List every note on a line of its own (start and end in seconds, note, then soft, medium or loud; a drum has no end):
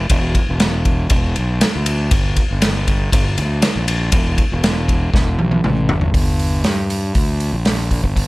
0.10 0.34 E1 loud
0.10 kick loud
0.10 ride medium
0.35 kick medium
0.35 ride medium
0.49 1.07 E1 medium
0.60 snare medium
0.60 ride medium
0.85 kick medium
0.85 ride medium
1.10 1.34 E1 loud
1.10 kick loud
1.10 ride medium
1.36 1.61 B1 medium
1.36 ride medium
1.61 snare loud
1.61 ride medium
1.76 2.10 D2 medium
1.86 ride medium
2.11 2.35 G1 loud
2.11 kick loud
2.11 ride medium
2.36 kick medium
2.36 ride medium
2.51 3.09 G1 medium
2.62 snare loud
2.62 ride medium
2.87 kick medium
2.87 ride medium
3.12 3.36 G1 loud
3.12 kick loud
3.12 ride medium
3.38 3.62 D2 medium
3.38 ride medium
3.62 snare loud
3.62 ride medium
3.76 4.11 A#1 medium
3.88 ride medium
4.12 4.37 E1 loud
4.12 kick loud
4.12 ride medium
4.38 kick medium
4.38 ride medium
4.52 5.10 E1 loud
4.64 snare loud
4.64 ride medium
4.88 kick medium
4.88 ride medium
5.14 5.37 E1 loud
5.14 kick loud
5.14 snare medium
5.39 5.63 B1 medium
5.39 high tom medium
5.51 high tom medium
5.64 5.87 A1 medium
5.64 mid tom medium
5.89 6.12 G1 medium
5.89 floor tom loud
6.01 floor tom medium
6.14 6.61 G1 medium
6.14 kick loud
6.14 open hi-hat medium
6.39 open hi-hat medium
6.64 7.11 G2 medium
6.64 snare medium
6.64 open hi-hat medium
6.90 open hi-hat medium
7.15 7.51 D2 medium
7.15 kick medium
7.15 open hi-hat medium
7.40 open hi-hat soft
7.53 8.00 A#1 medium
7.65 snare loud
7.65 open hi-hat medium
7.91 kick medium
7.91 open hi-hat medium
8.04 8.27 G1 medium
8.04 kick medium
8.16 kick medium
8.16 open hi-hat medium